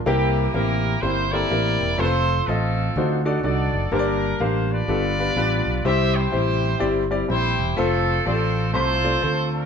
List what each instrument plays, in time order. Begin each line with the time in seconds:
0.06 fingered electric bass C2, grand piano C3 A#3 C4 E4 G4 A#4, horn section A#3 E4 G4
0.54 fingered electric bass A1, grand piano A#3 C4 E4 G4 A#4, horn section E4 G4 A#4
1.02 fingered electric bass G1, grand piano A#3 C4 E4 G4 C5, horn section E4 G4 C5
1.32 grand piano A#3 C4 E4 G4 A4, horn section G4 A#4 D5
1.51 fingered electric bass A1, grand piano A#3 C4 E4 G4 A#4
1.81 fingered electric bass E1
1.98 fingered electric bass F1, grand piano A3 C4 F4 A4 B4, horn section F4 A4 C5
2.05 grand piano C5
2.48 fingered electric bass A1, grand piano A3 C4 F4 A4 D#5, horn section C4 F4 A4
2.96 fingered electric bass D2, grand piano D3 D4 D#4 F#4 A4 C5
3.25 grand piano D4 D#4 F#4 A4 D5
3.44 fingered electric bass C2, grand piano D4 D#4 F#4 A4 D5, horn section F#4 A4 D5
3.73 fingered electric bass F#1
3.91 fingered electric bass G1, grand piano G2 A#3 D4 G4 A#4 C5, horn section D4 G4 A#4
3.99 grand piano D5
4.40 fingered electric bass A1, grand piano A#3 D4 G4 A#4 F5, horn section C5
4.72 horn section F4 B4 D5
4.88 fingered electric bass G1, grand piano G2 B3 D4 F4 G4 A4
5.19 grand piano B3 D4 F4 G4 B4
5.36 fingered electric bass A1, grand piano B3 D4 F4 G4 B4
5.66 fingered electric bass B1
5.85 fingered electric bass C2, grand piano C3 G3 C4 E4 G4 C5, horn section G4 C5 E5
6.15 horn section E4 G4 C5
6.32 fingered electric bass A1, grand piano G3 C4 E4 G4 C5
6.80 fingered electric bass G1, grand piano G3 C4 E4 G4 D5
7.11 grand piano G3 C4 E4 G4 D5
7.28 fingered electric bass A#1, grand piano G3 C4 E4 G4 C5, horn section E4 G4 C5
7.59 fingered electric bass E1
7.77 fingered electric bass F1, grand piano A3 C4 F4 A4 C5, horn section C4 F4 A4
8.26 fingered electric bass A1, grand piano A3 C4 F4 G4 D5, horn section F4 A4 C5
8.33 grand piano A4
8.73 fingered electric bass C2, grand piano A3 C4 F4 A4 C5, horn section F4 A4 C5
9.04 grand piano A3 C4 F4 A4 D5
9.22 fingered electric bass D2, grand piano A3 C4 F4 A4 C5
9.52 horn section D4 F4 A#4